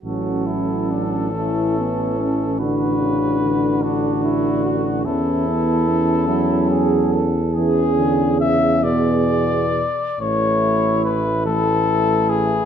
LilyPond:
<<
  \new Staff \with { instrumentName = "Cornet" } { \time 6/8 \key a \major \tempo 4. = 48 a'2. | b'4. fis'4. | a'2~ a'8 r8 | gis'4 e''8 d''4. |
cis''4 b'8 a'4 gis'8 | }
  \new Staff \with { instrumentName = "Flugelhorn" } { \time 6/8 \key a \major fis'8 e'8 d'8 cis'4. | fis'4. d'8 e'8 fis'8 | e'4. e'8 gis'8 a'8 | gis'4 r8 gis'4 r8 |
e'4. e'4. | }
  \new Staff \with { instrumentName = "Trombone section" } { \time 6/8 \key a \major cis'4. e'8 b8 cis'8 | d'4. d'4. | cis'8 b8 cis'2 | cis'4. b4 r8 |
a4. a4. | }
  \new Staff \with { instrumentName = "Trombone" } { \clef bass \time 6/8 \key a \major fis4. e4. | d8 cis8 d2 | e4. fis4 r8 | e8 d8 cis8 b,4 r8 |
e4. e4. | }
  \new Staff \with { instrumentName = "Tuba" } { \clef bass \time 6/8 \key a \major a,,2.~ | a,,2. | e,2.~ | e,2~ e,8 r8 |
a,,2. | }
>>